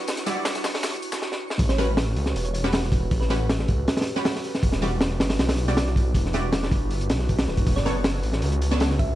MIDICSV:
0, 0, Header, 1, 7, 480
1, 0, Start_track
1, 0, Tempo, 379747
1, 92, Time_signature, 4, 2, 24, 8
1, 11567, End_track
2, 0, Start_track
2, 0, Title_t, "Synth texture"
2, 0, Program_c, 0, 99
2, 0, Note_on_c, 0, 85, 85
2, 1533, Note_off_c, 0, 85, 0
2, 11567, End_track
3, 0, Start_track
3, 0, Title_t, "Synth pluck"
3, 0, Program_c, 1, 84
3, 2137, Note_on_c, 1, 73, 90
3, 2230, Note_off_c, 1, 73, 0
3, 2255, Note_on_c, 1, 71, 99
3, 2543, Note_off_c, 1, 71, 0
3, 3092, Note_on_c, 1, 73, 89
3, 3169, Note_off_c, 1, 73, 0
3, 3208, Note_on_c, 1, 73, 78
3, 3289, Note_off_c, 1, 73, 0
3, 4052, Note_on_c, 1, 71, 88
3, 4128, Note_off_c, 1, 71, 0
3, 4170, Note_on_c, 1, 71, 82
3, 4250, Note_off_c, 1, 71, 0
3, 9811, Note_on_c, 1, 74, 96
3, 9907, Note_off_c, 1, 74, 0
3, 9928, Note_on_c, 1, 71, 97
3, 10219, Note_off_c, 1, 71, 0
3, 11368, Note_on_c, 1, 76, 95
3, 11567, Note_off_c, 1, 76, 0
3, 11567, End_track
4, 0, Start_track
4, 0, Title_t, "Ambient pad"
4, 0, Program_c, 2, 92
4, 93, Note_on_c, 2, 64, 77
4, 94, Note_on_c, 2, 66, 80
4, 95, Note_on_c, 2, 62, 88
4, 95, Note_on_c, 2, 71, 100
4, 96, Note_on_c, 2, 67, 80
4, 1265, Note_off_c, 2, 64, 0
4, 1265, Note_off_c, 2, 66, 0
4, 1266, Note_off_c, 2, 62, 0
4, 1266, Note_off_c, 2, 67, 0
4, 1266, Note_off_c, 2, 71, 0
4, 2014, Note_on_c, 2, 69, 78
4, 2015, Note_on_c, 2, 71, 94
4, 2016, Note_on_c, 2, 61, 86
4, 2016, Note_on_c, 2, 67, 81
4, 2018, Note_on_c, 2, 66, 82
4, 3185, Note_off_c, 2, 69, 0
4, 3186, Note_off_c, 2, 61, 0
4, 3186, Note_off_c, 2, 67, 0
4, 3186, Note_off_c, 2, 71, 0
4, 3187, Note_off_c, 2, 66, 0
4, 3939, Note_on_c, 2, 66, 77
4, 3939, Note_on_c, 2, 71, 93
4, 3940, Note_on_c, 2, 69, 79
4, 3941, Note_on_c, 2, 61, 88
4, 3941, Note_on_c, 2, 67, 76
4, 5108, Note_off_c, 2, 66, 0
4, 5108, Note_off_c, 2, 69, 0
4, 5108, Note_off_c, 2, 71, 0
4, 5109, Note_off_c, 2, 61, 0
4, 5109, Note_off_c, 2, 67, 0
4, 5858, Note_on_c, 2, 67, 80
4, 5859, Note_on_c, 2, 66, 82
4, 5859, Note_on_c, 2, 71, 92
4, 5860, Note_on_c, 2, 62, 89
4, 5860, Note_on_c, 2, 64, 78
4, 7027, Note_off_c, 2, 67, 0
4, 7028, Note_off_c, 2, 62, 0
4, 7028, Note_off_c, 2, 64, 0
4, 7028, Note_off_c, 2, 66, 0
4, 7028, Note_off_c, 2, 71, 0
4, 7775, Note_on_c, 2, 64, 81
4, 7775, Note_on_c, 2, 66, 78
4, 7776, Note_on_c, 2, 62, 87
4, 7776, Note_on_c, 2, 67, 78
4, 7776, Note_on_c, 2, 71, 94
4, 8946, Note_off_c, 2, 62, 0
4, 8946, Note_off_c, 2, 64, 0
4, 8946, Note_off_c, 2, 66, 0
4, 8946, Note_off_c, 2, 67, 0
4, 8946, Note_off_c, 2, 71, 0
4, 9695, Note_on_c, 2, 62, 78
4, 9696, Note_on_c, 2, 61, 85
4, 9696, Note_on_c, 2, 69, 81
4, 9697, Note_on_c, 2, 66, 78
4, 9698, Note_on_c, 2, 71, 97
4, 10866, Note_off_c, 2, 61, 0
4, 10866, Note_off_c, 2, 62, 0
4, 10866, Note_off_c, 2, 66, 0
4, 10866, Note_off_c, 2, 69, 0
4, 10867, Note_off_c, 2, 71, 0
4, 11567, End_track
5, 0, Start_track
5, 0, Title_t, "Synth stab"
5, 0, Program_c, 3, 62
5, 330, Note_on_c, 3, 64, 88
5, 331, Note_on_c, 3, 55, 95
5, 331, Note_on_c, 3, 74, 100
5, 332, Note_on_c, 3, 66, 84
5, 458, Note_off_c, 3, 64, 0
5, 459, Note_off_c, 3, 55, 0
5, 459, Note_off_c, 3, 66, 0
5, 459, Note_off_c, 3, 74, 0
5, 2252, Note_on_c, 3, 55, 87
5, 2252, Note_on_c, 3, 61, 84
5, 2252, Note_on_c, 3, 66, 83
5, 2253, Note_on_c, 3, 71, 102
5, 2379, Note_off_c, 3, 55, 0
5, 2379, Note_off_c, 3, 61, 0
5, 2380, Note_off_c, 3, 66, 0
5, 2380, Note_off_c, 3, 71, 0
5, 3336, Note_on_c, 3, 55, 91
5, 3336, Note_on_c, 3, 61, 84
5, 3336, Note_on_c, 3, 71, 106
5, 3337, Note_on_c, 3, 66, 86
5, 3534, Note_off_c, 3, 55, 0
5, 3534, Note_off_c, 3, 61, 0
5, 3534, Note_off_c, 3, 66, 0
5, 3534, Note_off_c, 3, 71, 0
5, 4174, Note_on_c, 3, 61, 86
5, 4175, Note_on_c, 3, 55, 91
5, 4175, Note_on_c, 3, 66, 84
5, 4175, Note_on_c, 3, 71, 104
5, 4301, Note_off_c, 3, 55, 0
5, 4301, Note_off_c, 3, 61, 0
5, 4301, Note_off_c, 3, 66, 0
5, 4301, Note_off_c, 3, 71, 0
5, 5256, Note_on_c, 3, 71, 103
5, 5257, Note_on_c, 3, 66, 85
5, 5258, Note_on_c, 3, 61, 84
5, 5259, Note_on_c, 3, 55, 91
5, 5454, Note_off_c, 3, 61, 0
5, 5454, Note_off_c, 3, 66, 0
5, 5454, Note_off_c, 3, 71, 0
5, 5455, Note_off_c, 3, 55, 0
5, 6093, Note_on_c, 3, 74, 100
5, 6094, Note_on_c, 3, 66, 84
5, 6095, Note_on_c, 3, 55, 94
5, 6095, Note_on_c, 3, 64, 82
5, 6220, Note_off_c, 3, 74, 0
5, 6221, Note_off_c, 3, 55, 0
5, 6221, Note_off_c, 3, 64, 0
5, 6221, Note_off_c, 3, 66, 0
5, 7177, Note_on_c, 3, 55, 91
5, 7177, Note_on_c, 3, 64, 85
5, 7177, Note_on_c, 3, 66, 84
5, 7178, Note_on_c, 3, 74, 101
5, 7374, Note_off_c, 3, 55, 0
5, 7374, Note_off_c, 3, 64, 0
5, 7374, Note_off_c, 3, 66, 0
5, 7375, Note_off_c, 3, 74, 0
5, 8011, Note_on_c, 3, 64, 84
5, 8011, Note_on_c, 3, 66, 84
5, 8012, Note_on_c, 3, 55, 96
5, 8013, Note_on_c, 3, 74, 101
5, 8139, Note_off_c, 3, 64, 0
5, 8139, Note_off_c, 3, 66, 0
5, 8140, Note_off_c, 3, 55, 0
5, 8140, Note_off_c, 3, 74, 0
5, 9932, Note_on_c, 3, 73, 97
5, 9933, Note_on_c, 3, 62, 84
5, 9933, Note_on_c, 3, 69, 85
5, 9934, Note_on_c, 3, 59, 92
5, 10059, Note_off_c, 3, 73, 0
5, 10060, Note_off_c, 3, 59, 0
5, 10060, Note_off_c, 3, 62, 0
5, 10060, Note_off_c, 3, 69, 0
5, 11013, Note_on_c, 3, 69, 88
5, 11013, Note_on_c, 3, 73, 100
5, 11014, Note_on_c, 3, 59, 94
5, 11014, Note_on_c, 3, 62, 86
5, 11212, Note_off_c, 3, 62, 0
5, 11212, Note_off_c, 3, 69, 0
5, 11212, Note_off_c, 3, 73, 0
5, 11213, Note_off_c, 3, 59, 0
5, 11567, End_track
6, 0, Start_track
6, 0, Title_t, "Detuned saw bass"
6, 0, Program_c, 4, 39
6, 2012, Note_on_c, 4, 33, 100
6, 2713, Note_off_c, 4, 33, 0
6, 2733, Note_on_c, 4, 37, 103
6, 2949, Note_off_c, 4, 37, 0
6, 2974, Note_on_c, 4, 28, 94
6, 3914, Note_off_c, 4, 28, 0
6, 3934, Note_on_c, 4, 33, 98
6, 4635, Note_off_c, 4, 33, 0
6, 4659, Note_on_c, 4, 37, 105
6, 4872, Note_off_c, 4, 37, 0
6, 5850, Note_on_c, 4, 28, 102
6, 6553, Note_off_c, 4, 28, 0
6, 6568, Note_on_c, 4, 31, 102
6, 6787, Note_off_c, 4, 31, 0
6, 6809, Note_on_c, 4, 35, 98
6, 7752, Note_off_c, 4, 35, 0
6, 7769, Note_on_c, 4, 28, 101
6, 8472, Note_off_c, 4, 28, 0
6, 8489, Note_on_c, 4, 31, 104
6, 8974, Note_on_c, 4, 35, 107
6, 8993, Note_off_c, 4, 31, 0
6, 9435, Note_off_c, 4, 35, 0
6, 9455, Note_on_c, 4, 26, 92
6, 9670, Note_off_c, 4, 26, 0
6, 9691, Note_on_c, 4, 30, 98
6, 10393, Note_off_c, 4, 30, 0
6, 10413, Note_on_c, 4, 33, 104
6, 10630, Note_off_c, 4, 33, 0
6, 10653, Note_on_c, 4, 37, 100
6, 11567, Note_off_c, 4, 37, 0
6, 11567, End_track
7, 0, Start_track
7, 0, Title_t, "Drums"
7, 95, Note_on_c, 9, 46, 76
7, 95, Note_on_c, 9, 54, 91
7, 105, Note_on_c, 9, 38, 99
7, 217, Note_on_c, 9, 42, 46
7, 221, Note_off_c, 9, 38, 0
7, 221, Note_off_c, 9, 54, 0
7, 221, Note_on_c, 9, 38, 45
7, 222, Note_off_c, 9, 46, 0
7, 329, Note_off_c, 9, 38, 0
7, 329, Note_on_c, 9, 38, 60
7, 331, Note_on_c, 9, 46, 64
7, 335, Note_on_c, 9, 54, 67
7, 344, Note_off_c, 9, 42, 0
7, 455, Note_off_c, 9, 38, 0
7, 457, Note_off_c, 9, 46, 0
7, 461, Note_off_c, 9, 54, 0
7, 568, Note_on_c, 9, 38, 117
7, 572, Note_off_c, 9, 38, 0
7, 572, Note_on_c, 9, 38, 118
7, 572, Note_on_c, 9, 54, 90
7, 576, Note_on_c, 9, 46, 81
7, 696, Note_on_c, 9, 42, 44
7, 699, Note_off_c, 9, 38, 0
7, 699, Note_off_c, 9, 54, 0
7, 699, Note_on_c, 9, 38, 59
7, 702, Note_off_c, 9, 46, 0
7, 809, Note_off_c, 9, 38, 0
7, 809, Note_on_c, 9, 38, 106
7, 811, Note_off_c, 9, 38, 0
7, 811, Note_on_c, 9, 38, 105
7, 811, Note_on_c, 9, 54, 79
7, 818, Note_on_c, 9, 46, 73
7, 823, Note_off_c, 9, 42, 0
7, 938, Note_off_c, 9, 38, 0
7, 938, Note_off_c, 9, 54, 0
7, 941, Note_on_c, 9, 38, 107
7, 944, Note_off_c, 9, 46, 0
7, 947, Note_on_c, 9, 46, 84
7, 1050, Note_off_c, 9, 38, 0
7, 1050, Note_on_c, 9, 38, 107
7, 1050, Note_on_c, 9, 54, 83
7, 1057, Note_off_c, 9, 38, 0
7, 1057, Note_on_c, 9, 38, 118
7, 1060, Note_off_c, 9, 46, 0
7, 1060, Note_on_c, 9, 46, 89
7, 1177, Note_off_c, 9, 54, 0
7, 1184, Note_off_c, 9, 38, 0
7, 1184, Note_on_c, 9, 42, 44
7, 1187, Note_off_c, 9, 46, 0
7, 1293, Note_on_c, 9, 54, 62
7, 1295, Note_on_c, 9, 46, 65
7, 1311, Note_off_c, 9, 42, 0
7, 1417, Note_off_c, 9, 54, 0
7, 1417, Note_on_c, 9, 38, 104
7, 1417, Note_on_c, 9, 54, 82
7, 1421, Note_off_c, 9, 46, 0
7, 1427, Note_off_c, 9, 38, 0
7, 1427, Note_on_c, 9, 38, 53
7, 1540, Note_off_c, 9, 38, 0
7, 1540, Note_on_c, 9, 38, 61
7, 1544, Note_off_c, 9, 54, 0
7, 1667, Note_off_c, 9, 38, 0
7, 1667, Note_on_c, 9, 38, 62
7, 1793, Note_off_c, 9, 38, 0
7, 1900, Note_on_c, 9, 38, 83
7, 2012, Note_on_c, 9, 36, 111
7, 2014, Note_on_c, 9, 46, 90
7, 2026, Note_off_c, 9, 38, 0
7, 2136, Note_on_c, 9, 38, 60
7, 2138, Note_off_c, 9, 36, 0
7, 2140, Note_off_c, 9, 46, 0
7, 2259, Note_off_c, 9, 38, 0
7, 2259, Note_on_c, 9, 38, 45
7, 2259, Note_on_c, 9, 46, 64
7, 2385, Note_off_c, 9, 46, 0
7, 2386, Note_off_c, 9, 38, 0
7, 2491, Note_on_c, 9, 38, 117
7, 2495, Note_on_c, 9, 46, 91
7, 2617, Note_off_c, 9, 38, 0
7, 2621, Note_off_c, 9, 46, 0
7, 2735, Note_on_c, 9, 46, 74
7, 2854, Note_on_c, 9, 38, 50
7, 2861, Note_off_c, 9, 46, 0
7, 2980, Note_off_c, 9, 38, 0
7, 2981, Note_on_c, 9, 46, 90
7, 3096, Note_on_c, 9, 42, 44
7, 3107, Note_off_c, 9, 46, 0
7, 3215, Note_on_c, 9, 46, 65
7, 3222, Note_off_c, 9, 42, 0
7, 3339, Note_on_c, 9, 38, 44
7, 3342, Note_off_c, 9, 46, 0
7, 3447, Note_on_c, 9, 46, 92
7, 3457, Note_off_c, 9, 38, 0
7, 3457, Note_on_c, 9, 38, 111
7, 3574, Note_off_c, 9, 46, 0
7, 3578, Note_off_c, 9, 38, 0
7, 3578, Note_on_c, 9, 38, 45
7, 3690, Note_on_c, 9, 36, 97
7, 3695, Note_on_c, 9, 46, 71
7, 3705, Note_off_c, 9, 38, 0
7, 3816, Note_off_c, 9, 36, 0
7, 3821, Note_off_c, 9, 46, 0
7, 3933, Note_on_c, 9, 46, 83
7, 3935, Note_on_c, 9, 36, 113
7, 4059, Note_off_c, 9, 46, 0
7, 4061, Note_off_c, 9, 36, 0
7, 4061, Note_on_c, 9, 38, 37
7, 4169, Note_off_c, 9, 38, 0
7, 4169, Note_on_c, 9, 38, 53
7, 4173, Note_on_c, 9, 46, 75
7, 4296, Note_off_c, 9, 38, 0
7, 4299, Note_off_c, 9, 46, 0
7, 4416, Note_on_c, 9, 38, 107
7, 4419, Note_on_c, 9, 46, 85
7, 4540, Note_off_c, 9, 38, 0
7, 4540, Note_on_c, 9, 38, 56
7, 4546, Note_off_c, 9, 46, 0
7, 4652, Note_on_c, 9, 46, 70
7, 4659, Note_on_c, 9, 36, 99
7, 4666, Note_off_c, 9, 38, 0
7, 4779, Note_off_c, 9, 46, 0
7, 4786, Note_off_c, 9, 36, 0
7, 4899, Note_on_c, 9, 46, 75
7, 4902, Note_on_c, 9, 38, 103
7, 5014, Note_off_c, 9, 38, 0
7, 5014, Note_on_c, 9, 38, 87
7, 5021, Note_off_c, 9, 46, 0
7, 5021, Note_on_c, 9, 46, 62
7, 5071, Note_off_c, 9, 38, 0
7, 5071, Note_on_c, 9, 38, 94
7, 5082, Note_off_c, 9, 46, 0
7, 5082, Note_on_c, 9, 46, 64
7, 5140, Note_off_c, 9, 46, 0
7, 5140, Note_on_c, 9, 46, 67
7, 5197, Note_off_c, 9, 38, 0
7, 5262, Note_on_c, 9, 38, 50
7, 5266, Note_off_c, 9, 46, 0
7, 5372, Note_on_c, 9, 46, 77
7, 5375, Note_off_c, 9, 38, 0
7, 5375, Note_on_c, 9, 38, 117
7, 5498, Note_off_c, 9, 46, 0
7, 5501, Note_off_c, 9, 38, 0
7, 5507, Note_on_c, 9, 38, 52
7, 5613, Note_on_c, 9, 46, 65
7, 5634, Note_off_c, 9, 38, 0
7, 5739, Note_off_c, 9, 46, 0
7, 5747, Note_on_c, 9, 38, 47
7, 5851, Note_on_c, 9, 36, 108
7, 5855, Note_on_c, 9, 46, 85
7, 5873, Note_off_c, 9, 38, 0
7, 5971, Note_on_c, 9, 38, 57
7, 5977, Note_off_c, 9, 36, 0
7, 5982, Note_off_c, 9, 46, 0
7, 6089, Note_on_c, 9, 46, 74
7, 6097, Note_off_c, 9, 38, 0
7, 6100, Note_on_c, 9, 38, 39
7, 6216, Note_off_c, 9, 46, 0
7, 6226, Note_off_c, 9, 38, 0
7, 6328, Note_on_c, 9, 38, 113
7, 6337, Note_on_c, 9, 46, 82
7, 6454, Note_off_c, 9, 38, 0
7, 6463, Note_off_c, 9, 46, 0
7, 6573, Note_on_c, 9, 38, 114
7, 6581, Note_on_c, 9, 46, 83
7, 6695, Note_off_c, 9, 38, 0
7, 6695, Note_on_c, 9, 38, 95
7, 6697, Note_off_c, 9, 46, 0
7, 6697, Note_on_c, 9, 46, 72
7, 6814, Note_off_c, 9, 46, 0
7, 6814, Note_on_c, 9, 46, 76
7, 6816, Note_off_c, 9, 38, 0
7, 6816, Note_on_c, 9, 38, 103
7, 6934, Note_off_c, 9, 38, 0
7, 6934, Note_off_c, 9, 46, 0
7, 6934, Note_on_c, 9, 38, 109
7, 6934, Note_on_c, 9, 46, 87
7, 7052, Note_off_c, 9, 46, 0
7, 7052, Note_on_c, 9, 46, 66
7, 7060, Note_off_c, 9, 38, 0
7, 7179, Note_off_c, 9, 46, 0
7, 7179, Note_on_c, 9, 38, 42
7, 7291, Note_off_c, 9, 38, 0
7, 7291, Note_on_c, 9, 38, 117
7, 7297, Note_on_c, 9, 46, 96
7, 7415, Note_off_c, 9, 38, 0
7, 7415, Note_on_c, 9, 38, 41
7, 7423, Note_off_c, 9, 46, 0
7, 7533, Note_on_c, 9, 36, 92
7, 7541, Note_off_c, 9, 38, 0
7, 7545, Note_on_c, 9, 46, 65
7, 7660, Note_off_c, 9, 36, 0
7, 7671, Note_off_c, 9, 46, 0
7, 7768, Note_on_c, 9, 36, 103
7, 7772, Note_on_c, 9, 46, 94
7, 7894, Note_off_c, 9, 36, 0
7, 7898, Note_off_c, 9, 46, 0
7, 7906, Note_on_c, 9, 38, 37
7, 8003, Note_on_c, 9, 46, 66
7, 8014, Note_off_c, 9, 38, 0
7, 8014, Note_on_c, 9, 38, 51
7, 8130, Note_off_c, 9, 46, 0
7, 8141, Note_off_c, 9, 38, 0
7, 8248, Note_on_c, 9, 46, 85
7, 8249, Note_on_c, 9, 38, 113
7, 8374, Note_off_c, 9, 46, 0
7, 8375, Note_off_c, 9, 38, 0
7, 8382, Note_on_c, 9, 38, 60
7, 8489, Note_on_c, 9, 36, 96
7, 8494, Note_on_c, 9, 46, 72
7, 8508, Note_off_c, 9, 38, 0
7, 8615, Note_off_c, 9, 36, 0
7, 8620, Note_off_c, 9, 46, 0
7, 8729, Note_on_c, 9, 46, 81
7, 8855, Note_off_c, 9, 46, 0
7, 8859, Note_on_c, 9, 42, 43
7, 8969, Note_on_c, 9, 46, 80
7, 8973, Note_on_c, 9, 38, 102
7, 8986, Note_off_c, 9, 42, 0
7, 9086, Note_off_c, 9, 38, 0
7, 9086, Note_on_c, 9, 38, 52
7, 9095, Note_off_c, 9, 46, 0
7, 9212, Note_off_c, 9, 38, 0
7, 9213, Note_on_c, 9, 46, 62
7, 9218, Note_on_c, 9, 36, 80
7, 9334, Note_on_c, 9, 38, 108
7, 9335, Note_off_c, 9, 46, 0
7, 9335, Note_on_c, 9, 46, 83
7, 9344, Note_off_c, 9, 36, 0
7, 9456, Note_off_c, 9, 38, 0
7, 9456, Note_on_c, 9, 38, 55
7, 9461, Note_off_c, 9, 46, 0
7, 9571, Note_on_c, 9, 46, 62
7, 9573, Note_on_c, 9, 36, 78
7, 9582, Note_off_c, 9, 38, 0
7, 9690, Note_off_c, 9, 36, 0
7, 9690, Note_off_c, 9, 46, 0
7, 9690, Note_on_c, 9, 36, 120
7, 9690, Note_on_c, 9, 46, 96
7, 9816, Note_off_c, 9, 46, 0
7, 9817, Note_off_c, 9, 36, 0
7, 9819, Note_on_c, 9, 38, 50
7, 9935, Note_off_c, 9, 38, 0
7, 9935, Note_on_c, 9, 38, 45
7, 9936, Note_on_c, 9, 46, 66
7, 10061, Note_off_c, 9, 38, 0
7, 10062, Note_off_c, 9, 46, 0
7, 10166, Note_on_c, 9, 38, 127
7, 10166, Note_on_c, 9, 46, 93
7, 10292, Note_off_c, 9, 46, 0
7, 10293, Note_off_c, 9, 38, 0
7, 10407, Note_on_c, 9, 46, 73
7, 10527, Note_on_c, 9, 38, 44
7, 10534, Note_off_c, 9, 46, 0
7, 10644, Note_on_c, 9, 46, 91
7, 10654, Note_off_c, 9, 38, 0
7, 10769, Note_on_c, 9, 42, 45
7, 10770, Note_off_c, 9, 46, 0
7, 10891, Note_on_c, 9, 46, 68
7, 10896, Note_off_c, 9, 42, 0
7, 11016, Note_on_c, 9, 38, 45
7, 11017, Note_off_c, 9, 46, 0
7, 11124, Note_on_c, 9, 46, 90
7, 11136, Note_off_c, 9, 38, 0
7, 11136, Note_on_c, 9, 38, 119
7, 11251, Note_off_c, 9, 46, 0
7, 11256, Note_off_c, 9, 38, 0
7, 11256, Note_on_c, 9, 38, 45
7, 11367, Note_on_c, 9, 36, 102
7, 11367, Note_on_c, 9, 46, 67
7, 11382, Note_off_c, 9, 38, 0
7, 11493, Note_off_c, 9, 36, 0
7, 11494, Note_off_c, 9, 46, 0
7, 11567, End_track
0, 0, End_of_file